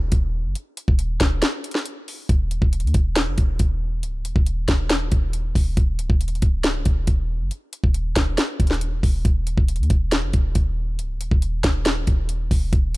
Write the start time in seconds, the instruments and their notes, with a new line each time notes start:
Already playing: 808-style bass D#1
0.12 808-style bass D#1, kick, closed hi-hat
0.45 808-style bass F#1
0.55 closed hi-hat
0.77 closed hi-hat
0.88 808-style bass D#1, kick
0.99 closed hi-hat
1.20 808-style bass D#1, kick, snare, closed hi-hat
1.42 snare, closed hi-hat
1.64 closed hi-hat
1.71 snare, closed hi-hat
1.79 closed hi-hat
1.86 closed hi-hat
2.08 open hi-hat
2.29 808-style bass D#1, kick, closed hi-hat
2.51 closed hi-hat
2.62 808-style bass D#1, kick
2.73 closed hi-hat
2.80 808-style bass D#2, closed hi-hat
2.87 closed hi-hat
2.94 808-style bass D#1, kick, closed hi-hat
3.16 snare, closed hi-hat
3.27 808-style bass F#1
3.38 808-style bass D#1, kick, closed hi-hat
3.59 808-style bass D#1, kick, closed hi-hat
4.03 808-style bass C#1, closed hi-hat
4.20 808-style bass D#1
4.25 closed hi-hat
4.36 808-style bass D#1, kick
4.46 closed hi-hat
4.68 808-style bass D#1, kick, snare, closed hi-hat
4.90 snare, closed hi-hat
5.12 808-style bass D#1, kick, closed hi-hat
5.33 closed hi-hat
5.55 808-style bass D#1, kick, open hi-hat
5.77 808-style bass D#1, kick, closed hi-hat
5.99 808-style bass C#1, closed hi-hat
6.10 808-style bass D#1, kick
6.21 closed hi-hat
6.28 closed hi-hat
6.35 closed hi-hat
6.42 808-style bass C#1, kick, closed hi-hat
6.64 snare, closed hi-hat
6.85 808-style bass D#1, kick, closed hi-hat
7.07 808-style bass D#1, kick, closed hi-hat
7.40 808-style bass F#1
7.51 closed hi-hat
7.73 closed hi-hat
7.84 808-style bass D#1, kick
7.94 closed hi-hat
8.16 808-style bass D#1, kick, snare, closed hi-hat
8.38 snare, closed hi-hat
8.60 808-style bass D#1, kick, closed hi-hat
8.67 snare, closed hi-hat
8.74 closed hi-hat
8.81 closed hi-hat
9.03 808-style bass D#1, kick, open hi-hat
9.25 808-style bass D#1, kick, closed hi-hat
9.47 closed hi-hat
9.58 808-style bass D#1, kick
9.68 closed hi-hat
9.76 808-style bass D#2, closed hi-hat
9.83 closed hi-hat
9.90 808-style bass D#1, kick, closed hi-hat
10.12 snare, closed hi-hat
10.23 808-style bass F#1
10.33 808-style bass D#1, kick, closed hi-hat
10.55 808-style bass D#1, kick, closed hi-hat
10.99 808-style bass C#1, closed hi-hat
11.15 808-style bass D#1
11.21 closed hi-hat
11.31 808-style bass D#1, kick
11.42 closed hi-hat
11.64 808-style bass D#1, kick, snare, closed hi-hat
11.85 snare, closed hi-hat
12.07 808-style bass D#1, kick, closed hi-hat
12.29 closed hi-hat
12.51 808-style bass D#1, kick, open hi-hat
12.73 808-style bass D#1, kick, closed hi-hat